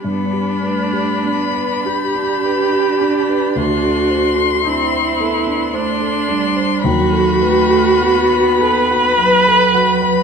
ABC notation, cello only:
X:1
M:3/4
L:1/8
Q:1/4=54
K:G
V:1 name="Cello"
B, A, B, D3- | D2 C B, A, G, | F, A, B,2 F,2 |]